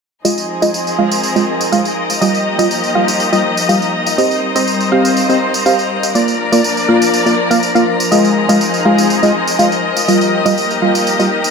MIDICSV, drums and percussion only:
0, 0, Header, 1, 2, 480
1, 0, Start_track
1, 0, Tempo, 491803
1, 240, Time_signature, 4, 2, 24, 8
1, 11229, End_track
2, 0, Start_track
2, 0, Title_t, "Drums"
2, 244, Note_on_c, 9, 54, 55
2, 341, Note_off_c, 9, 54, 0
2, 368, Note_on_c, 9, 54, 31
2, 465, Note_off_c, 9, 54, 0
2, 608, Note_on_c, 9, 54, 64
2, 706, Note_off_c, 9, 54, 0
2, 724, Note_on_c, 9, 54, 53
2, 821, Note_off_c, 9, 54, 0
2, 849, Note_on_c, 9, 54, 32
2, 946, Note_off_c, 9, 54, 0
2, 1088, Note_on_c, 9, 54, 65
2, 1186, Note_off_c, 9, 54, 0
2, 1204, Note_on_c, 9, 54, 52
2, 1302, Note_off_c, 9, 54, 0
2, 1328, Note_on_c, 9, 54, 32
2, 1426, Note_off_c, 9, 54, 0
2, 1568, Note_on_c, 9, 54, 63
2, 1666, Note_off_c, 9, 54, 0
2, 1684, Note_on_c, 9, 54, 53
2, 1781, Note_off_c, 9, 54, 0
2, 1808, Note_on_c, 9, 54, 32
2, 1906, Note_off_c, 9, 54, 0
2, 2048, Note_on_c, 9, 54, 65
2, 2146, Note_off_c, 9, 54, 0
2, 2164, Note_on_c, 9, 54, 53
2, 2261, Note_off_c, 9, 54, 0
2, 2289, Note_on_c, 9, 54, 30
2, 2387, Note_off_c, 9, 54, 0
2, 2528, Note_on_c, 9, 54, 62
2, 2626, Note_off_c, 9, 54, 0
2, 2643, Note_on_c, 9, 54, 52
2, 2741, Note_off_c, 9, 54, 0
2, 2768, Note_on_c, 9, 54, 32
2, 2866, Note_off_c, 9, 54, 0
2, 3008, Note_on_c, 9, 54, 63
2, 3105, Note_off_c, 9, 54, 0
2, 3123, Note_on_c, 9, 54, 51
2, 3221, Note_off_c, 9, 54, 0
2, 3248, Note_on_c, 9, 54, 30
2, 3345, Note_off_c, 9, 54, 0
2, 3488, Note_on_c, 9, 54, 61
2, 3585, Note_off_c, 9, 54, 0
2, 3603, Note_on_c, 9, 54, 51
2, 3701, Note_off_c, 9, 54, 0
2, 3728, Note_on_c, 9, 54, 30
2, 3825, Note_off_c, 9, 54, 0
2, 3967, Note_on_c, 9, 54, 60
2, 4065, Note_off_c, 9, 54, 0
2, 4083, Note_on_c, 9, 54, 53
2, 4181, Note_off_c, 9, 54, 0
2, 4208, Note_on_c, 9, 54, 30
2, 4305, Note_off_c, 9, 54, 0
2, 4448, Note_on_c, 9, 54, 63
2, 4545, Note_off_c, 9, 54, 0
2, 4563, Note_on_c, 9, 54, 50
2, 4660, Note_off_c, 9, 54, 0
2, 4688, Note_on_c, 9, 54, 31
2, 4786, Note_off_c, 9, 54, 0
2, 4928, Note_on_c, 9, 54, 62
2, 5025, Note_off_c, 9, 54, 0
2, 5043, Note_on_c, 9, 54, 50
2, 5140, Note_off_c, 9, 54, 0
2, 5168, Note_on_c, 9, 54, 31
2, 5265, Note_off_c, 9, 54, 0
2, 5408, Note_on_c, 9, 54, 59
2, 5506, Note_off_c, 9, 54, 0
2, 5524, Note_on_c, 9, 54, 51
2, 5621, Note_off_c, 9, 54, 0
2, 5648, Note_on_c, 9, 54, 31
2, 5746, Note_off_c, 9, 54, 0
2, 5888, Note_on_c, 9, 54, 61
2, 5986, Note_off_c, 9, 54, 0
2, 6004, Note_on_c, 9, 54, 53
2, 6101, Note_off_c, 9, 54, 0
2, 6128, Note_on_c, 9, 54, 31
2, 6226, Note_off_c, 9, 54, 0
2, 6368, Note_on_c, 9, 54, 62
2, 6466, Note_off_c, 9, 54, 0
2, 6484, Note_on_c, 9, 54, 52
2, 6581, Note_off_c, 9, 54, 0
2, 6609, Note_on_c, 9, 54, 31
2, 6706, Note_off_c, 9, 54, 0
2, 6849, Note_on_c, 9, 54, 64
2, 6947, Note_off_c, 9, 54, 0
2, 6964, Note_on_c, 9, 54, 50
2, 7062, Note_off_c, 9, 54, 0
2, 7089, Note_on_c, 9, 54, 32
2, 7187, Note_off_c, 9, 54, 0
2, 7329, Note_on_c, 9, 54, 60
2, 7427, Note_off_c, 9, 54, 0
2, 7445, Note_on_c, 9, 54, 51
2, 7542, Note_off_c, 9, 54, 0
2, 7569, Note_on_c, 9, 54, 30
2, 7667, Note_off_c, 9, 54, 0
2, 7809, Note_on_c, 9, 54, 63
2, 7906, Note_off_c, 9, 54, 0
2, 7924, Note_on_c, 9, 54, 57
2, 8021, Note_off_c, 9, 54, 0
2, 8049, Note_on_c, 9, 54, 31
2, 8146, Note_off_c, 9, 54, 0
2, 8289, Note_on_c, 9, 54, 66
2, 8386, Note_off_c, 9, 54, 0
2, 8403, Note_on_c, 9, 54, 55
2, 8501, Note_off_c, 9, 54, 0
2, 8528, Note_on_c, 9, 54, 32
2, 8626, Note_off_c, 9, 54, 0
2, 8768, Note_on_c, 9, 54, 67
2, 8866, Note_off_c, 9, 54, 0
2, 8883, Note_on_c, 9, 54, 52
2, 8981, Note_off_c, 9, 54, 0
2, 9008, Note_on_c, 9, 54, 33
2, 9105, Note_off_c, 9, 54, 0
2, 9247, Note_on_c, 9, 54, 63
2, 9345, Note_off_c, 9, 54, 0
2, 9363, Note_on_c, 9, 54, 54
2, 9460, Note_off_c, 9, 54, 0
2, 9487, Note_on_c, 9, 54, 32
2, 9584, Note_off_c, 9, 54, 0
2, 9727, Note_on_c, 9, 54, 64
2, 9824, Note_off_c, 9, 54, 0
2, 9842, Note_on_c, 9, 54, 57
2, 9939, Note_off_c, 9, 54, 0
2, 9967, Note_on_c, 9, 54, 33
2, 10064, Note_off_c, 9, 54, 0
2, 10207, Note_on_c, 9, 54, 68
2, 10305, Note_off_c, 9, 54, 0
2, 10323, Note_on_c, 9, 54, 54
2, 10420, Note_off_c, 9, 54, 0
2, 10448, Note_on_c, 9, 54, 34
2, 10545, Note_off_c, 9, 54, 0
2, 10688, Note_on_c, 9, 54, 68
2, 10785, Note_off_c, 9, 54, 0
2, 10803, Note_on_c, 9, 54, 55
2, 10901, Note_off_c, 9, 54, 0
2, 10927, Note_on_c, 9, 54, 34
2, 11025, Note_off_c, 9, 54, 0
2, 11168, Note_on_c, 9, 54, 67
2, 11229, Note_off_c, 9, 54, 0
2, 11229, End_track
0, 0, End_of_file